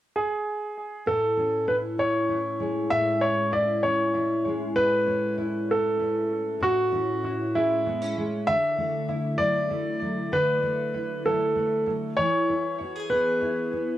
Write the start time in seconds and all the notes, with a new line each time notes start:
0.15 G#4
1.06 A2 A4
1.37 C#4
1.67 E4 B4
1.98 C#4 C#5
2.29 E4
2.60 G#3
2.90 A2 E5
3.21 C#5
3.53 E4 D5
3.83 C#4 C#5
4.15 E4
4.45 G#3
4.76 A2 B4
5.07 C#4
5.38 E4
5.71 A4
6.00 C#4
6.61 A2 F#4
6.92 C#4
7.23 E4
7.55 G#3 E4
7.86 B3
8.01 C#4
8.17 G#3
8.47 D3 E5
8.78 A3
9.08 E4
9.38 F#3 D5
9.70 A3
10.01 F#3
10.32 D3 B4
10.63 A3
10.94 E4
11.26 F#3 A4
11.56 A3
11.86 F#3
12.17 E3 C#5
12.49 E4
12.80 F#4
12.96 G#4
13.10 B3 B4
13.42 E4
13.73 B3